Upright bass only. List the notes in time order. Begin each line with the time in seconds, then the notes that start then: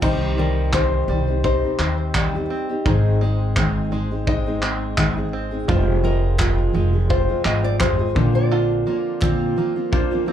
0.02 C2
1.08 C2
1.79 D#2
2.86 G#1
5.69 F1
6.75 F1
7.45 G#1
8.16 A#1